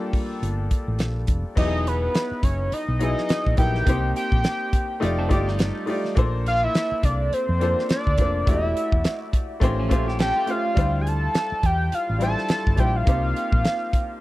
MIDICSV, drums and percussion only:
0, 0, Header, 1, 2, 480
1, 0, Start_track
1, 0, Tempo, 575264
1, 1311, Time_signature, 4, 2, 24, 8
1, 11851, End_track
2, 0, Start_track
2, 0, Title_t, "Drums"
2, 111, Note_on_c, 9, 36, 78
2, 115, Note_on_c, 9, 46, 52
2, 195, Note_off_c, 9, 36, 0
2, 198, Note_off_c, 9, 46, 0
2, 358, Note_on_c, 9, 42, 73
2, 441, Note_off_c, 9, 42, 0
2, 591, Note_on_c, 9, 42, 66
2, 593, Note_on_c, 9, 36, 78
2, 674, Note_off_c, 9, 42, 0
2, 676, Note_off_c, 9, 36, 0
2, 824, Note_on_c, 9, 42, 75
2, 836, Note_on_c, 9, 38, 90
2, 907, Note_off_c, 9, 42, 0
2, 920, Note_off_c, 9, 38, 0
2, 1062, Note_on_c, 9, 42, 69
2, 1070, Note_on_c, 9, 36, 85
2, 1145, Note_off_c, 9, 42, 0
2, 1153, Note_off_c, 9, 36, 0
2, 1310, Note_on_c, 9, 36, 95
2, 1312, Note_on_c, 9, 49, 88
2, 1393, Note_off_c, 9, 36, 0
2, 1395, Note_off_c, 9, 49, 0
2, 1560, Note_on_c, 9, 42, 68
2, 1644, Note_off_c, 9, 42, 0
2, 1790, Note_on_c, 9, 42, 70
2, 1797, Note_on_c, 9, 38, 93
2, 1874, Note_off_c, 9, 42, 0
2, 1881, Note_off_c, 9, 38, 0
2, 2028, Note_on_c, 9, 36, 81
2, 2029, Note_on_c, 9, 42, 74
2, 2111, Note_off_c, 9, 36, 0
2, 2112, Note_off_c, 9, 42, 0
2, 2271, Note_on_c, 9, 42, 75
2, 2354, Note_off_c, 9, 42, 0
2, 2507, Note_on_c, 9, 42, 63
2, 2591, Note_off_c, 9, 42, 0
2, 2651, Note_on_c, 9, 38, 34
2, 2734, Note_off_c, 9, 38, 0
2, 2744, Note_on_c, 9, 42, 76
2, 2756, Note_on_c, 9, 38, 99
2, 2828, Note_off_c, 9, 42, 0
2, 2840, Note_off_c, 9, 38, 0
2, 2891, Note_on_c, 9, 36, 73
2, 2975, Note_off_c, 9, 36, 0
2, 2980, Note_on_c, 9, 42, 75
2, 2988, Note_on_c, 9, 36, 98
2, 3064, Note_off_c, 9, 42, 0
2, 3071, Note_off_c, 9, 36, 0
2, 3128, Note_on_c, 9, 38, 30
2, 3211, Note_off_c, 9, 38, 0
2, 3226, Note_on_c, 9, 42, 79
2, 3227, Note_on_c, 9, 36, 107
2, 3310, Note_off_c, 9, 36, 0
2, 3310, Note_off_c, 9, 42, 0
2, 3473, Note_on_c, 9, 42, 69
2, 3556, Note_off_c, 9, 42, 0
2, 3605, Note_on_c, 9, 36, 80
2, 3688, Note_off_c, 9, 36, 0
2, 3704, Note_on_c, 9, 42, 71
2, 3711, Note_on_c, 9, 38, 97
2, 3788, Note_off_c, 9, 42, 0
2, 3795, Note_off_c, 9, 38, 0
2, 3947, Note_on_c, 9, 36, 85
2, 3947, Note_on_c, 9, 42, 75
2, 4030, Note_off_c, 9, 36, 0
2, 4030, Note_off_c, 9, 42, 0
2, 4192, Note_on_c, 9, 42, 75
2, 4275, Note_off_c, 9, 42, 0
2, 4427, Note_on_c, 9, 42, 68
2, 4431, Note_on_c, 9, 36, 84
2, 4510, Note_off_c, 9, 42, 0
2, 4514, Note_off_c, 9, 36, 0
2, 4573, Note_on_c, 9, 38, 33
2, 4656, Note_off_c, 9, 38, 0
2, 4663, Note_on_c, 9, 42, 80
2, 4676, Note_on_c, 9, 38, 108
2, 4747, Note_off_c, 9, 42, 0
2, 4759, Note_off_c, 9, 38, 0
2, 4899, Note_on_c, 9, 46, 48
2, 4982, Note_off_c, 9, 46, 0
2, 5047, Note_on_c, 9, 38, 33
2, 5131, Note_off_c, 9, 38, 0
2, 5145, Note_on_c, 9, 42, 80
2, 5148, Note_on_c, 9, 36, 101
2, 5228, Note_off_c, 9, 42, 0
2, 5232, Note_off_c, 9, 36, 0
2, 5394, Note_on_c, 9, 42, 72
2, 5477, Note_off_c, 9, 42, 0
2, 5628, Note_on_c, 9, 42, 62
2, 5635, Note_on_c, 9, 38, 98
2, 5712, Note_off_c, 9, 42, 0
2, 5719, Note_off_c, 9, 38, 0
2, 5868, Note_on_c, 9, 36, 81
2, 5868, Note_on_c, 9, 42, 78
2, 5952, Note_off_c, 9, 36, 0
2, 5952, Note_off_c, 9, 42, 0
2, 6113, Note_on_c, 9, 42, 69
2, 6197, Note_off_c, 9, 42, 0
2, 6351, Note_on_c, 9, 42, 65
2, 6434, Note_off_c, 9, 42, 0
2, 6499, Note_on_c, 9, 38, 34
2, 6582, Note_off_c, 9, 38, 0
2, 6584, Note_on_c, 9, 42, 80
2, 6596, Note_on_c, 9, 38, 100
2, 6668, Note_off_c, 9, 42, 0
2, 6680, Note_off_c, 9, 38, 0
2, 6732, Note_on_c, 9, 36, 77
2, 6815, Note_off_c, 9, 36, 0
2, 6821, Note_on_c, 9, 42, 68
2, 6828, Note_on_c, 9, 36, 100
2, 6905, Note_off_c, 9, 42, 0
2, 6912, Note_off_c, 9, 36, 0
2, 7068, Note_on_c, 9, 36, 113
2, 7069, Note_on_c, 9, 42, 79
2, 7152, Note_off_c, 9, 36, 0
2, 7152, Note_off_c, 9, 42, 0
2, 7314, Note_on_c, 9, 42, 67
2, 7398, Note_off_c, 9, 42, 0
2, 7446, Note_on_c, 9, 36, 85
2, 7529, Note_off_c, 9, 36, 0
2, 7545, Note_on_c, 9, 42, 71
2, 7552, Note_on_c, 9, 38, 104
2, 7629, Note_off_c, 9, 42, 0
2, 7636, Note_off_c, 9, 38, 0
2, 7787, Note_on_c, 9, 36, 84
2, 7789, Note_on_c, 9, 42, 72
2, 7871, Note_off_c, 9, 36, 0
2, 7873, Note_off_c, 9, 42, 0
2, 8022, Note_on_c, 9, 36, 90
2, 8028, Note_on_c, 9, 42, 72
2, 8106, Note_off_c, 9, 36, 0
2, 8112, Note_off_c, 9, 42, 0
2, 8269, Note_on_c, 9, 42, 69
2, 8270, Note_on_c, 9, 36, 91
2, 8352, Note_off_c, 9, 42, 0
2, 8354, Note_off_c, 9, 36, 0
2, 8415, Note_on_c, 9, 38, 35
2, 8499, Note_off_c, 9, 38, 0
2, 8502, Note_on_c, 9, 42, 80
2, 8515, Note_on_c, 9, 38, 109
2, 8586, Note_off_c, 9, 42, 0
2, 8598, Note_off_c, 9, 38, 0
2, 8739, Note_on_c, 9, 42, 73
2, 8822, Note_off_c, 9, 42, 0
2, 8984, Note_on_c, 9, 42, 77
2, 8986, Note_on_c, 9, 36, 106
2, 9068, Note_off_c, 9, 42, 0
2, 9070, Note_off_c, 9, 36, 0
2, 9235, Note_on_c, 9, 42, 65
2, 9318, Note_off_c, 9, 42, 0
2, 9466, Note_on_c, 9, 42, 77
2, 9473, Note_on_c, 9, 38, 96
2, 9550, Note_off_c, 9, 42, 0
2, 9557, Note_off_c, 9, 38, 0
2, 9706, Note_on_c, 9, 36, 80
2, 9706, Note_on_c, 9, 42, 71
2, 9789, Note_off_c, 9, 42, 0
2, 9790, Note_off_c, 9, 36, 0
2, 9948, Note_on_c, 9, 42, 76
2, 10031, Note_off_c, 9, 42, 0
2, 10186, Note_on_c, 9, 42, 67
2, 10269, Note_off_c, 9, 42, 0
2, 10330, Note_on_c, 9, 38, 36
2, 10413, Note_off_c, 9, 38, 0
2, 10418, Note_on_c, 9, 42, 78
2, 10430, Note_on_c, 9, 38, 98
2, 10501, Note_off_c, 9, 42, 0
2, 10513, Note_off_c, 9, 38, 0
2, 10571, Note_on_c, 9, 36, 81
2, 10654, Note_off_c, 9, 36, 0
2, 10659, Note_on_c, 9, 42, 70
2, 10667, Note_on_c, 9, 36, 88
2, 10742, Note_off_c, 9, 42, 0
2, 10750, Note_off_c, 9, 36, 0
2, 10904, Note_on_c, 9, 42, 82
2, 10906, Note_on_c, 9, 36, 110
2, 10988, Note_off_c, 9, 42, 0
2, 10990, Note_off_c, 9, 36, 0
2, 11151, Note_on_c, 9, 42, 70
2, 11235, Note_off_c, 9, 42, 0
2, 11284, Note_on_c, 9, 36, 91
2, 11368, Note_off_c, 9, 36, 0
2, 11386, Note_on_c, 9, 42, 68
2, 11393, Note_on_c, 9, 38, 97
2, 11469, Note_off_c, 9, 42, 0
2, 11476, Note_off_c, 9, 38, 0
2, 11626, Note_on_c, 9, 36, 84
2, 11627, Note_on_c, 9, 42, 72
2, 11709, Note_off_c, 9, 36, 0
2, 11710, Note_off_c, 9, 42, 0
2, 11851, End_track
0, 0, End_of_file